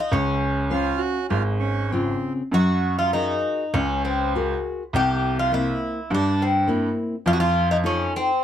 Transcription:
0.00 0.13 D#4 medium
0.12 0.89 C#2 medium
0.12 0.69 C#3 medium
0.12 1.27 C#4 medium
0.70 1.18 C#4 soft
0.70 1.02 F4 medium
0.70 1.18 C5 soft
0.70 1.19 F5 soft
0.97 1.27 F#4 medium
1.29 2.10 G#1 medium
1.29 1.90 G#3 medium
1.29 1.43 F4 medium
1.59 1.92 C#4 medium
1.89 2.42 C#3 soft
1.89 2.33 C4 medium
1.89 2.41 C4 soft
1.93 2.41 F4 soft
2.52 3.31 F#2 medium
2.52 3.12 F#3 medium
2.52 2.98 F#4 medium
2.99 3.13 F4 medium
3.13 3.76 D#4 medium
3.13 3.63 F#4 soft
3.13 3.63 G#4 soft
3.13 3.63 A#4 soft
3.74 4.51 C#2 medium
3.74 4.33 C#3 medium
3.74 4.04 C#4 medium
4.05 4.33 C4 medium
4.35 4.82 F#4 soft
4.35 4.82 G#4 soft
4.35 4.83 A#4 soft
4.93 5.69 C2 medium
4.93 5.50 C3 medium
4.93 5.39 G4 medium
5.39 5.53 F4 medium
5.52 5.99 A#3 soft
5.52 5.99 C4 soft
5.52 5.99 E4 medium
5.52 6.13 E4 medium
6.10 6.86 G2 medium
6.10 6.67 G3 medium
6.15 6.42 D4 medium
6.42 6.68 C4 medium
6.67 7.14 A#3 soft
6.67 7.15 C4 soft
6.67 7.15 E4 medium
7.26 8.02 F2 medium
7.26 7.83 F3 medium
7.26 7.33 F4 loud
7.33 7.40 F#4 medium
7.40 7.71 F4 loud
7.71 7.76 D#4 medium
7.84 8.12 C#4 medium
7.84 8.31 D#4 soft
7.84 8.31 F4 soft
7.84 8.31 A4 medium
8.16 8.44 C4 medium

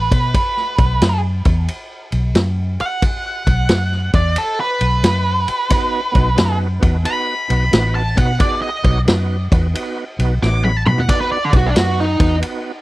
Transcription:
0.00 1.20 B4 medium
0.12 0.33 B2 medium
0.12 kick loud
0.12 ride medium
0.34 muted fingered electric bass stroke soft
0.34 kick medium
0.34 ride medium
0.57 snare soft
0.78 1.00 B1 medium
0.78 kick loud
0.78 ride medium
1.01 1.43 F#2 medium
1.01 snare loud
1.01 ride loud
1.45 1.67 E2 medium
1.45 kick loud
1.45 ride medium
1.68 ride medium
2.12 2.34 B1 medium
2.12 ride medium
2.35 2.77 F#2 medium
2.35 snare loud
2.35 ride medium
2.80 4.11 F#5 medium
2.80 muted fingered electric bass stroke soft
2.80 ride medium
3.02 muted fingered electric bass stroke soft
3.02 kick loud
3.02 ride medium
3.47 3.68 B1 medium
3.47 kick medium
3.47 ride medium
3.69 4.11 F#2 medium
3.69 snare loud
3.69 ride loud
3.92 snare soft
4.13 4.35 E2 medium
4.13 4.37 D5 medium
4.13 kick loud
4.13 ride medium
4.36 4.59 A4 medium
4.36 ride loud
4.60 6.57 B4 loud
4.81 5.02 B1 medium
4.81 ride medium
5.03 5.45 F#2 medium
5.03 snare loud
5.03 ride loud
5.48 muted fingered electric bass stroke soft
5.48 ride medium
5.69 6.01 B3 loud
5.69 6.01 D#4 loud
5.69 6.01 F#4 loud
5.69 6.01 B4 loud
5.69 muted fingered electric bass stroke soft
5.69 kick loud
5.69 ride loud
6.12 6.37 B1 medium
6.12 6.29 B3 loud
6.12 6.30 D#4 medium
6.12 6.30 F#4 loud
6.12 6.30 B4 loud
6.12 kick loud
6.12 ride medium
6.35 6.80 F#2 loud
6.35 6.67 B3 medium
6.35 6.68 D#4 medium
6.35 6.68 F#4 medium
6.35 6.68 B4 medium
6.35 snare loud
6.35 ride loud
6.79 7.04 E2 medium
6.79 6.97 B3 medium
6.79 6.97 D#4 medium
6.79 6.97 F#4 medium
6.79 6.97 B4 medium
6.79 kick loud
6.79 ride medium
7.03 7.35 B3 medium
7.03 7.35 D#4 medium
7.03 7.35 F#4 medium
7.03 7.36 B4 medium
7.03 7.93 B5 medium
7.03 ride medium
7.48 7.71 B1 medium
7.48 7.65 B3 medium
7.48 7.65 D#4 medium
7.48 7.65 F#4 medium
7.48 7.65 B4 medium
7.48 ride medium
7.71 8.14 A1 medium
7.71 8.02 B3 medium
7.71 8.03 D#4 medium
7.71 8.03 F#4 medium
7.71 8.03 B4 loud
7.71 snare loud
7.71 ride medium
7.95 8.17 A5 medium
8.15 8.38 B2 medium
8.15 8.32 B3 medium
8.15 8.32 D#4 medium
8.15 8.33 F#4 medium
8.15 8.33 B4 medium
8.15 8.40 F#5 medium
8.15 kick loud
8.15 ride medium
8.39 8.70 B3 loud
8.39 8.70 D#4 medium
8.39 8.70 F#4 medium
8.39 8.70 G#4 loud
8.39 8.61 D5 medium
8.39 kick loud
8.39 ride medium
8.62 8.98 D#5 loud
8.83 9.05 B1 medium
8.83 8.99 B3 loud
8.83 9.00 D#4 medium
8.83 9.00 F#4 medium
8.83 9.00 C#5 loud
8.83 kick loud
8.83 ride medium
9.05 9.49 F#2 medium
9.05 9.36 B3 medium
9.05 9.37 D#4 medium
9.05 9.37 F#4 medium
9.05 9.37 B4 medium
9.05 snare loud
9.05 ride medium
9.51 9.73 E2 medium
9.51 9.67 B3 medium
9.51 9.67 D#4 medium
9.51 9.67 F#4 medium
9.51 9.68 B4 medium
9.51 kick loud
9.51 ride medium
9.74 10.04 B3 medium
9.74 10.04 D#4 medium
9.74 10.05 F#4 medium
9.74 10.05 B4 medium
9.74 ride loud
10.19 10.40 B1 medium
10.19 10.34 B3 medium
10.19 10.34 D#4 medium
10.19 10.35 F#4 medium
10.19 10.35 B4 loud
10.19 ride medium
10.42 10.83 A1 medium
10.42 10.72 B3 medium
10.42 10.72 D#4 medium
10.42 10.72 F#4 medium
10.42 10.72 C#5 medium
10.42 10.64 D6 loud
10.42 snare medium
10.65 10.77 B5 loud
10.65 high tom medium
10.77 10.81 A5 medium
10.86 11.08 B2 medium
10.86 11.01 B3 medium
10.86 11.02 D#4 medium
10.86 11.02 F#4 medium
10.86 11.02 B4 medium
10.86 11.01 B5 medium
10.86 mid tom medium
10.98 11.08 F#5 medium
10.98 floor tom medium
11.08 11.38 B3 medium
11.08 11.38 D#4 medium
11.08 11.39 F#4 medium
11.08 11.39 B4 loud
11.08 11.20 D5 loud
11.08 muted fingered electric bass stroke soft
11.08 kick medium
11.08 ride medium
11.08 splash medium
11.21 11.29 B4 loud
11.32 11.53 D5 medium
11.45 11.49 A4 medium
11.52 11.74 B1 loud
11.52 11.68 B3 loud
11.52 11.68 D#4 medium
11.52 11.69 F#4 medium
11.52 11.69 B4 loud
11.52 kick loud
11.52 ride medium
11.57 11.69 F#4 medium
11.66 11.75 D4 loud
11.75 12.17 F#2 medium
11.75 12.06 B3 medium
11.75 12.05 D#4 medium
11.75 12.06 F#4 medium
11.75 11.98 F#4 medium
11.75 12.06 B4 medium
11.75 snare loud
11.75 ride loud
11.99 12.35 D#4 loud
11.99 snare soft
12.19 12.41 E2 medium
12.19 12.35 B3 medium
12.19 12.35 D#4 medium
12.19 12.35 F#4 medium
12.19 12.36 B4 medium
12.19 kick loud
12.19 ride medium
12.40 12.71 B3 medium
12.40 12.72 D#4 medium
12.40 12.72 F#4 medium
12.40 12.72 B4 medium
12.40 ride medium

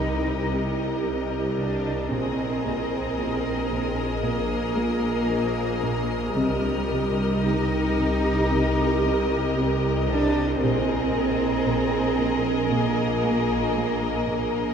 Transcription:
0.00 2.07 C2 soft
0.00 2.12 C2 medium
0.00 0.30 C3 soft
0.00 1.04 D#4 medium
0.00 2.07 G4 soft
0.00 2.07 A#4 soft
0.00 2.07 D#5 soft
0.00 1.54 A#5 soft
0.00 0.47 B5 soft
0.52 0.84 C4 soft
1.05 1.37 C4 soft
1.57 1.90 C3 soft
1.57 2.07 D4 medium
2.09 6.32 A#1 soft
2.09 6.36 A#1 medium
2.09 2.44 A#2 medium
2.09 4.23 C4 medium
2.09 6.31 G#4 soft
2.09 6.32 A#4 soft
2.09 6.32 D#5 soft
2.09 10.03 D#6 soft
2.66 2.97 A#2 soft
3.17 3.50 A#2 soft
3.17 10.04 F6 soft
3.71 4.03 A#2 soft
4.23 4.55 A#2 medium
4.23 6.35 A#3 medium
4.76 5.08 A#3 soft
5.29 5.61 A#3 soft
5.83 6.15 A#2 soft
6.35 10.57 C2 medium
6.35 10.62 C2 medium
6.35 6.69 C3 medium
6.35 7.42 G3 medium
6.35 10.61 G4 medium
6.35 10.57 A#4 medium
6.35 10.57 D#5 medium
6.91 7.23 C3 soft
7.44 7.76 C3 soft
7.44 9.56 D#4 medium
7.98 8.29 C3 soft
8.50 8.82 C3 medium
9.04 9.35 C4 soft
9.57 9.88 C4 soft
10.08 10.40 C3 soft
10.08 10.57 D4 medium
10.61 14.74 A#1 medium
10.61 10.94 A#2 medium
10.61 12.72 C4 medium
10.61 14.74 G#4 medium
10.61 14.74 A#4 medium
10.61 14.74 D#5 medium
11.14 11.45 A#2 soft
11.67 11.99 A#2 soft
12.19 12.51 A#2 soft
12.71 13.03 A#2 medium
12.71 14.74 A#3 medium
13.24 13.56 A#3 soft
13.77 14.09 A#3 soft
14.30 14.61 A#2 soft

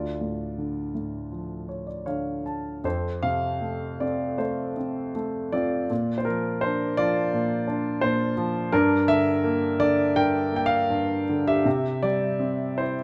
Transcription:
0.00 2.80 D2 soft
0.00 2.04 F4 soft
0.00 1.85 D5 soft
0.21 0.93 A2 soft
0.58 2.03 D3 soft
0.95 2.42 A2 soft
1.32 2.81 F3 soft
1.69 1.87 C#5 soft
1.87 2.06 D5 soft
2.06 2.82 D3 soft
2.06 2.80 C#5 soft
2.06 2.43 F5 soft
2.46 2.82 A5 soft
2.84 5.86 F2 soft
2.84 4.35 A4 soft
2.84 3.24 C5 medium
3.23 4.73 C3 soft
3.23 4.02 F5 medium
3.61 4.36 A3 soft
4.00 4.75 C4 soft
4.00 4.40 D5 medium
4.38 5.14 A3 soft
4.38 5.86 A4 soft
4.38 5.11 C5 medium
4.77 5.52 C4 soft
5.15 5.88 A3 medium
5.52 5.89 C4 medium
5.52 6.94 F4 soft
5.52 6.16 D5 medium
5.90 7.31 A#2 medium
6.18 6.26 C5 medium
6.25 6.97 F3 soft
6.25 6.63 A#4 medium
6.61 7.66 D4 soft
6.61 6.98 C5 medium
6.97 8.33 F3 soft
6.97 8.33 F4 medium
6.97 8.05 D5 medium
7.33 8.00 A#2 medium
7.67 8.69 D4 soft
8.01 8.70 A#2 medium
8.01 8.68 C5 medium
8.37 8.71 F3 medium
8.72 10.14 G2 medium
8.72 10.13 D4 medium
8.72 9.06 A#4 medium
9.08 9.78 D3 medium
9.08 9.82 E5 medium
9.44 10.51 A#3 medium
9.79 11.25 D3 medium
9.79 10.17 D5 loud
10.16 10.89 G2 medium
10.16 11.62 A#4 medium
10.16 10.55 G5 medium
10.52 11.62 A#3 soft
10.56 10.64 G5 medium
10.66 11.50 F5 medium
10.90 11.63 G2 medium
11.29 11.65 D3 medium
11.47 12.93 G4 medium
11.47 12.04 E5 medium
11.65 13.03 C3 medium
12.03 13.03 G3 soft
12.03 12.80 D5 medium
12.40 13.03 C4 soft
12.78 13.03 E4 soft
12.78 13.03 C5 medium

